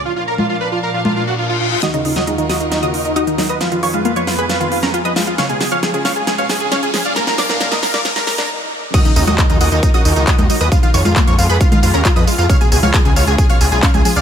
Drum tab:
CC |----------------|----------------|----------------|----------------|
HH |----------------|xxoxxxoxxxoxxxox|xxoxxxoxxxoxxxox|xxoxxxoxxxoxxxox|
TB |----------------|----------------|----------------|----------------|
CP |----------------|----------------|----------------|----------------|
SD |----------------|o--o--o-o-----o-|o-----o-o--o--o-|o-o-o-o-o-o-o-o-|
CG |---o-----o------|----------------|----------------|----------------|
BD |----------------|----------------|----------------|----------------|

CC |----------------|x---------------|----------------|----------------|
HH |xxoxxxoxxxox----|xxoxxxoxxxoxxxox|xxoxxxoxxxoxxxox|xxoxxxoxxxoxxxox|
TB |----------------|xxxxxxxxxxxxxxxx|xxxxxxxxxxxxxxxx|xxxxxxxxxxxxxxxx|
CP |----------------|----x-------x---|----x-------x---|----x-------x---|
SD |oooooooooooo----|----------------|----------------|----------------|
CG |----------------|---o---------o--|---o-----o------|---o---------o--|
BD |----------------|o---o---o---o---|o---o---o---o---|o---o---o---o---|